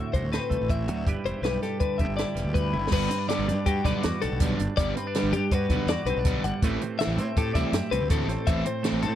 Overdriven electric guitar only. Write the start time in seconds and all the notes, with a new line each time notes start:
2.92 D3 G3 B3 D4
3.11 muted overdriven electric guitar stroke
3.29 D3 G3 B3 D4
3.48 muted overdriven electric guitar stroke
3.67 muted overdriven electric guitar stroke
3.85 D3 G3 B3 D4
4.04 muted overdriven electric guitar stroke
4.22 muted overdriven electric guitar stroke
4.41 D3 G3 B3 D4
4.61 muted overdriven electric guitar stroke
4.79 D3 G3 B3 D4
4.97 muted overdriven electric guitar stroke
5.16 D3 G3 B3 D4
5.34 muted overdriven electric guitar stroke
5.53 muted overdriven electric guitar stroke
5.71 D3 G3 B3 D4
5.90 muted overdriven electric guitar stroke
6.07 muted overdriven electric guitar stroke
6.26 D3 G3 B3 D4
6.44 muted overdriven electric guitar stroke
6.63 E3 A3 C4 E4
6.82 muted overdriven electric guitar stroke
7.01 E3 A3 C4 E4
7.19 muted overdriven electric guitar stroke
7.38 muted overdriven electric guitar stroke
7.55 E3 A3 C4 E4
7.74 muted overdriven electric guitar stroke
7.92 muted overdriven electric guitar stroke
8.10 E3 A3 C4 E4
8.29 muted overdriven electric guitar stroke
8.48 E3 A3 C4 E4
8.66 muted overdriven electric guitar stroke
8.84 E3 A3 C4 E4
9.04 muted overdriven electric guitar stroke